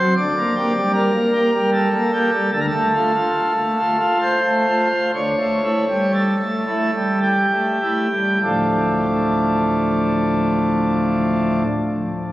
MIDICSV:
0, 0, Header, 1, 2, 480
1, 0, Start_track
1, 0, Key_signature, -1, "minor"
1, 0, Tempo, 782269
1, 102, Time_signature, 3, 2, 24, 8
1, 1062, Tempo, 814111
1, 2022, Tempo, 862069
1, 2502, Tempo, 921659
1, 2982, Tempo, 998336
1, 3462, Tempo, 1084991
1, 3942, Tempo, 1200000
1, 4422, Tempo, 1237113
1, 5934, End_track
2, 0, Start_track
2, 0, Title_t, "Pipe organ"
2, 0, Program_c, 0, 19
2, 0, Note_on_c, 0, 54, 53
2, 0, Note_on_c, 0, 72, 73
2, 84, Note_off_c, 0, 54, 0
2, 88, Note_off_c, 0, 72, 0
2, 103, Note_on_c, 0, 38, 63
2, 103, Note_on_c, 0, 50, 58
2, 103, Note_on_c, 0, 74, 99
2, 204, Note_off_c, 0, 38, 0
2, 204, Note_off_c, 0, 50, 0
2, 228, Note_on_c, 0, 58, 53
2, 331, Note_off_c, 0, 58, 0
2, 344, Note_on_c, 0, 67, 56
2, 345, Note_on_c, 0, 58, 48
2, 444, Note_off_c, 0, 58, 0
2, 444, Note_off_c, 0, 67, 0
2, 461, Note_on_c, 0, 55, 52
2, 565, Note_off_c, 0, 74, 0
2, 577, Note_on_c, 0, 70, 95
2, 674, Note_off_c, 0, 55, 0
2, 699, Note_on_c, 0, 58, 59
2, 806, Note_off_c, 0, 58, 0
2, 818, Note_on_c, 0, 58, 54
2, 818, Note_on_c, 0, 67, 57
2, 921, Note_off_c, 0, 67, 0
2, 922, Note_off_c, 0, 58, 0
2, 938, Note_on_c, 0, 55, 43
2, 1046, Note_off_c, 0, 70, 0
2, 1060, Note_on_c, 0, 69, 94
2, 1153, Note_off_c, 0, 55, 0
2, 1177, Note_on_c, 0, 58, 57
2, 1283, Note_off_c, 0, 58, 0
2, 1296, Note_on_c, 0, 58, 60
2, 1298, Note_on_c, 0, 67, 58
2, 1397, Note_off_c, 0, 58, 0
2, 1398, Note_off_c, 0, 67, 0
2, 1415, Note_on_c, 0, 55, 59
2, 1516, Note_off_c, 0, 55, 0
2, 1520, Note_off_c, 0, 69, 0
2, 1532, Note_on_c, 0, 38, 70
2, 1532, Note_on_c, 0, 50, 71
2, 1532, Note_on_c, 0, 69, 102
2, 1569, Note_off_c, 0, 69, 0
2, 1574, Note_on_c, 0, 70, 88
2, 1610, Note_off_c, 0, 70, 0
2, 1617, Note_on_c, 0, 69, 99
2, 1635, Note_off_c, 0, 38, 0
2, 1635, Note_off_c, 0, 50, 0
2, 1660, Note_on_c, 0, 57, 61
2, 1766, Note_off_c, 0, 57, 0
2, 1779, Note_on_c, 0, 57, 54
2, 1779, Note_on_c, 0, 65, 61
2, 1882, Note_off_c, 0, 57, 0
2, 1882, Note_off_c, 0, 65, 0
2, 1901, Note_on_c, 0, 65, 50
2, 2115, Note_off_c, 0, 65, 0
2, 2143, Note_on_c, 0, 57, 60
2, 2248, Note_off_c, 0, 57, 0
2, 2259, Note_on_c, 0, 57, 57
2, 2259, Note_on_c, 0, 65, 53
2, 2361, Note_off_c, 0, 57, 0
2, 2361, Note_off_c, 0, 65, 0
2, 2377, Note_on_c, 0, 65, 49
2, 2479, Note_off_c, 0, 69, 0
2, 2500, Note_on_c, 0, 72, 97
2, 2594, Note_off_c, 0, 65, 0
2, 2621, Note_on_c, 0, 57, 54
2, 2727, Note_off_c, 0, 57, 0
2, 2742, Note_on_c, 0, 57, 53
2, 2743, Note_on_c, 0, 65, 59
2, 2844, Note_off_c, 0, 57, 0
2, 2844, Note_off_c, 0, 65, 0
2, 2863, Note_on_c, 0, 65, 58
2, 2966, Note_off_c, 0, 65, 0
2, 2967, Note_off_c, 0, 72, 0
2, 2984, Note_on_c, 0, 38, 63
2, 2984, Note_on_c, 0, 50, 67
2, 2985, Note_on_c, 0, 73, 79
2, 3081, Note_off_c, 0, 50, 0
2, 3082, Note_off_c, 0, 38, 0
2, 3100, Note_on_c, 0, 57, 54
2, 3205, Note_off_c, 0, 57, 0
2, 3218, Note_on_c, 0, 57, 52
2, 3219, Note_on_c, 0, 64, 49
2, 3321, Note_off_c, 0, 57, 0
2, 3321, Note_off_c, 0, 64, 0
2, 3339, Note_on_c, 0, 55, 51
2, 3449, Note_off_c, 0, 73, 0
2, 3463, Note_on_c, 0, 69, 92
2, 3555, Note_off_c, 0, 55, 0
2, 3579, Note_on_c, 0, 57, 52
2, 3685, Note_off_c, 0, 57, 0
2, 3697, Note_on_c, 0, 64, 49
2, 3699, Note_on_c, 0, 57, 43
2, 3800, Note_off_c, 0, 64, 0
2, 3801, Note_off_c, 0, 57, 0
2, 3819, Note_on_c, 0, 55, 41
2, 3928, Note_off_c, 0, 69, 0
2, 3942, Note_on_c, 0, 67, 65
2, 4033, Note_off_c, 0, 55, 0
2, 4058, Note_on_c, 0, 57, 39
2, 4165, Note_off_c, 0, 57, 0
2, 4179, Note_on_c, 0, 57, 41
2, 4179, Note_on_c, 0, 64, 47
2, 4282, Note_off_c, 0, 57, 0
2, 4282, Note_off_c, 0, 64, 0
2, 4299, Note_on_c, 0, 55, 41
2, 4404, Note_off_c, 0, 55, 0
2, 4408, Note_off_c, 0, 67, 0
2, 4422, Note_on_c, 0, 38, 50
2, 4423, Note_on_c, 0, 26, 54
2, 4423, Note_on_c, 0, 45, 49
2, 4423, Note_on_c, 0, 53, 40
2, 4423, Note_on_c, 0, 57, 46
2, 4424, Note_on_c, 0, 62, 53
2, 5663, Note_off_c, 0, 38, 0
2, 5664, Note_off_c, 0, 26, 0
2, 5664, Note_off_c, 0, 45, 0
2, 5664, Note_off_c, 0, 53, 0
2, 5665, Note_off_c, 0, 57, 0
2, 5666, Note_off_c, 0, 62, 0
2, 5934, End_track
0, 0, End_of_file